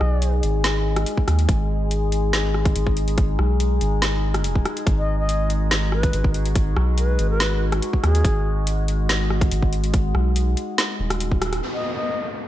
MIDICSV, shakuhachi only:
0, 0, Header, 1, 2, 480
1, 0, Start_track
1, 0, Key_signature, 5, "minor"
1, 0, Tempo, 422535
1, 1689, Time_signature, 4, 2, 24, 8
1, 14176, End_track
2, 0, Start_track
2, 0, Title_t, "Shakuhachi"
2, 0, Program_c, 0, 77
2, 0, Note_on_c, 0, 75, 89
2, 375, Note_off_c, 0, 75, 0
2, 5657, Note_on_c, 0, 75, 92
2, 5871, Note_off_c, 0, 75, 0
2, 5894, Note_on_c, 0, 75, 92
2, 6249, Note_off_c, 0, 75, 0
2, 6727, Note_on_c, 0, 71, 100
2, 7095, Note_off_c, 0, 71, 0
2, 7926, Note_on_c, 0, 71, 92
2, 8269, Note_off_c, 0, 71, 0
2, 8292, Note_on_c, 0, 71, 93
2, 8647, Note_off_c, 0, 71, 0
2, 9125, Note_on_c, 0, 68, 93
2, 9802, Note_off_c, 0, 68, 0
2, 13334, Note_on_c, 0, 75, 84
2, 13550, Note_off_c, 0, 75, 0
2, 13572, Note_on_c, 0, 75, 88
2, 13928, Note_off_c, 0, 75, 0
2, 14176, End_track
0, 0, End_of_file